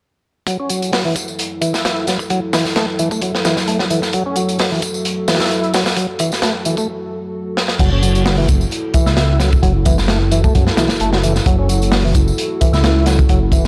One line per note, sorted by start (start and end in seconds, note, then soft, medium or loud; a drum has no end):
0.47 7.76 F#3 medium
0.47 0.57 F#3 medium
0.47 4.10 E4 medium
0.47 7.76 A4 medium
0.47 kick loud
0.47 closed hi-hat medium
0.47 tambourine soft
0.60 0.70 C#4 medium
0.69 0.91 F#3 medium
0.69 closed hi-hat medium
0.69 tambourine medium
0.82 closed hi-hat soft
0.82 tambourine soft
0.93 1.04 F#3 medium
0.93 snare loud
0.93 open hi-hat medium
0.93 tambourine soft
1.05 1.15 E3 medium
1.16 kick medium
1.16 closed hi-hat medium
1.16 tambourine medium
1.28 tambourine soft
1.39 closed hi-hat medium
1.39 tambourine soft
1.61 1.73 E3 medium
1.61 kick medium
1.61 closed hi-hat medium
1.61 tambourine medium
1.73 2.06 E4 medium
1.73 snare soft
1.73 tambourine soft
1.85 snare loud
1.85 closed hi-hat medium
1.85 tambourine soft
2.07 2.17 F#3 medium
2.07 snare soft
2.07 closed hi-hat medium
2.07 tambourine medium
2.19 kick medium
2.19 tambourine soft
2.30 2.40 F#3 medium
2.30 kick loud
2.30 closed hi-hat medium
2.30 tambourine soft
2.53 2.65 E3 medium
2.53 snare loud
2.53 open hi-hat medium
2.53 tambourine medium
2.65 snare soft
2.65 tambourine soft
2.76 2.86 A3 medium
2.76 snare loud
2.76 closed hi-hat medium
2.76 tambourine soft
2.99 3.09 E3 loud
2.99 closed hi-hat medium
2.99 tambourine medium
3.11 3.21 A3 medium
3.11 kick medium
3.11 tambourine soft
3.22 3.32 F#3 medium
3.22 kick loud
3.22 closed hi-hat medium
3.22 tambourine soft
3.35 snare soft
3.45 3.56 E3 medium
3.45 snare loud
3.45 closed hi-hat medium
3.45 tambourine medium
3.57 snare medium
3.57 tambourine soft
3.68 3.78 A3 medium
3.68 closed hi-hat medium
3.68 tambourine soft
3.79 3.85 F#3 medium
3.79 snare soft
3.90 4.00 E3 loud
3.90 closed hi-hat medium
3.90 tambourine medium
4.02 snare soft
4.02 tambourine soft
4.13 4.24 F#3 medium
4.13 7.76 F#4 medium
4.13 kick loud
4.13 closed hi-hat medium
4.13 tambourine soft
4.26 4.36 C#4 medium
4.36 4.58 F#3 medium
4.36 closed hi-hat medium
4.36 tambourine medium
4.49 closed hi-hat soft
4.49 tambourine soft
4.59 4.70 F#3 medium
4.59 snare loud
4.59 open hi-hat medium
4.59 tambourine soft
4.72 4.82 E3 medium
4.82 kick medium
4.82 closed hi-hat medium
4.82 tambourine medium
4.94 tambourine soft
5.05 closed hi-hat medium
5.05 tambourine soft
5.28 5.40 E3 medium
5.28 snare medium
5.28 open hi-hat medium
5.28 tambourine medium
5.34 snare medium
5.34 open hi-hat medium
5.40 5.73 E4 medium
5.40 snare medium
5.40 open hi-hat medium
5.40 tambourine soft
5.46 snare medium
5.46 open hi-hat medium
5.51 closed hi-hat medium
5.51 tambourine soft
5.64 closed hi-hat soft
5.74 5.84 F#3 loud
5.74 snare loud
5.74 open hi-hat medium
5.74 tambourine medium
5.86 snare loud
5.86 open hi-hat medium
5.86 tambourine soft
5.96 6.07 F#3 medium
5.96 kick loud
5.96 closed hi-hat medium
5.96 tambourine soft
6.19 6.31 E3 medium
6.19 kick medium
6.19 closed hi-hat medium
6.19 tambourine medium
6.32 snare soft
6.32 tambourine soft
6.42 6.52 A3 medium
6.42 snare loud
6.42 closed hi-hat medium
6.42 tambourine soft
6.65 6.75 E3 medium
6.65 closed hi-hat medium
6.65 tambourine medium
6.77 6.87 A3 medium
6.77 kick medium
6.77 tambourine soft
7.57 snare medium
7.68 snare medium
7.79 8.65 F#1 loud
7.79 7.90 F#3 medium
7.79 13.68 E4 medium
7.79 13.68 F#4 medium
7.79 13.68 A4 medium
7.79 kick loud
7.79 closed hi-hat medium
7.79 crash medium
7.79 tambourine soft
7.92 8.02 C#4 medium
8.02 8.24 F#3 medium
8.02 closed hi-hat medium
8.02 tambourine medium
8.15 closed hi-hat soft
8.15 tambourine soft
8.25 8.37 F#3 medium
8.25 snare loud
8.25 open hi-hat medium
8.25 tambourine soft
8.38 8.48 E3 medium
8.48 kick loud
8.48 closed hi-hat medium
8.48 tambourine medium
8.61 tambourine soft
8.71 closed hi-hat medium
8.71 tambourine soft
8.94 9.06 E3 medium
8.94 kick medium
8.94 closed hi-hat medium
8.94 tambourine medium
9.06 9.57 C#2 loud
9.06 9.39 E4 medium
9.06 snare soft
9.06 tambourine soft
9.17 snare loud
9.17 closed hi-hat medium
9.17 tambourine soft
9.40 9.50 F#3 loud
9.40 snare medium
9.40 closed hi-hat medium
9.40 tambourine medium
9.52 kick medium
9.52 tambourine soft
9.63 10.49 F#1 loud
9.63 9.73 F#3 medium
9.63 kick loud
9.63 closed hi-hat medium
9.63 tambourine soft
9.85 9.97 E3 medium
9.85 kick medium
9.85 closed hi-hat medium
9.85 tambourine medium
9.98 snare soft
9.98 tambourine soft
10.08 10.19 A3 medium
10.08 snare loud
10.08 closed hi-hat medium
10.31 10.42 E3 loud
10.31 closed hi-hat medium
10.31 tambourine medium
10.44 10.54 A3 medium
10.44 kick medium
10.44 tambourine soft
10.55 10.71 F#2 medium
10.55 10.65 F#3 medium
10.55 kick loud
10.55 closed hi-hat medium
10.55 tambourine soft
10.67 snare medium
10.77 10.89 B1 medium
10.77 10.89 E3 medium
10.77 snare loud
10.77 closed hi-hat medium
10.77 tambourine medium
10.89 10.98 F#1 soft
10.89 snare medium
10.89 tambourine soft
11.00 11.40 F#1 medium
11.00 11.11 A3 medium
11.00 closed hi-hat medium
11.00 tambourine soft
11.13 11.18 F#3 medium
11.13 snare medium
11.23 11.33 E3 loud
11.23 closed hi-hat medium
11.23 tambourine medium
11.36 snare soft
11.36 tambourine soft
11.46 12.32 F#1 loud
11.46 11.56 F#3 medium
11.46 kick loud
11.46 closed hi-hat medium
11.46 tambourine soft
11.59 11.69 C#4 medium
11.69 11.91 F#3 medium
11.69 closed hi-hat medium
11.69 tambourine medium
11.82 closed hi-hat soft
11.82 tambourine soft
11.92 12.03 F#3 medium
11.92 snare loud
11.92 open hi-hat medium
11.92 tambourine soft
12.05 12.15 E3 medium
12.15 kick medium
12.15 closed hi-hat medium
12.15 tambourine medium
12.28 tambourine soft
12.38 closed hi-hat medium
12.38 tambourine soft
12.61 12.73 E3 medium
12.61 kick medium
12.61 closed hi-hat medium
12.61 tambourine medium
12.73 13.23 C#2 loud
12.73 13.06 E4 medium
12.73 snare soft
12.73 tambourine soft
12.84 snare loud
12.84 closed hi-hat medium
12.84 tambourine soft
13.06 13.17 F#3 loud
13.06 snare medium
13.06 closed hi-hat medium
13.06 tambourine medium
13.19 kick loud
13.19 tambourine soft
13.29 13.68 F#1 loud
13.29 13.39 F#3 medium
13.29 kick loud
13.29 closed hi-hat medium
13.29 tambourine soft
13.52 13.64 E3 medium
13.52 kick medium
13.52 closed hi-hat medium
13.52 tambourine medium